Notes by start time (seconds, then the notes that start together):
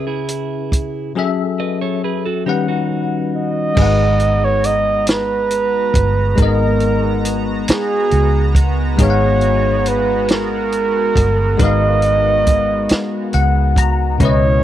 Already playing: C#2 C#3 C#4 E4 B4 E5
0.07 E4 G#4
0.28 closed hi-hat
0.72 kick, closed hi-hat
1.15 F#3 C#4 G#4 A4 E5
1.60 B4 D#5
1.81 A4 C#5
2.04 G#4 B4
2.25 F#4 A4
2.46 D#3 G3 C#4 D#4 G4 B4 F#5
2.68 D#4 F#4
3.35 D#5
3.75 G#1 G#3 B3 D#4 F#4 G#4 A#5, kick, crash
3.80 B4 F#5
4.20 closed hi-hat
4.45 C#5
4.64 D#5, closed hi-hat
5.07 B4, snare, closed hi-hat
5.51 closed hi-hat
5.94 G1, kick, closed hi-hat
6.35 G#1 G#3 D#4 A#4, kick, closed hi-hat
6.41 B3 A#4 D#5
6.80 closed hi-hat
7.25 closed hi-hat
7.68 G#4, muted fingered electric bass stroke, snare, closed hi-hat
8.11 C#2, closed hi-hat
8.55 kick, closed hi-hat
8.97 G#1 G#3 D#4 G#4, kick, closed hi-hat
9.02 B3 C#5 F5
9.10 F#5
9.41 closed hi-hat
9.86 B4, closed hi-hat
10.28 A#4, snare, closed hi-hat
10.72 closed hi-hat
11.16 G1, kick, closed hi-hat
11.57 G#1 G#3 D#4 A#4, kick, closed hi-hat
11.62 B4 D#5 F5
12.02 closed hi-hat
12.47 kick, closed hi-hat
12.89 muted fingered electric bass stroke, snare, closed hi-hat
13.33 C#2 F#5, closed hi-hat
13.76 A#5, kick, closed hi-hat
14.18 C#2 B2 B3 C#4 E4, kick, closed hi-hat
14.22 B4 C#5 D#5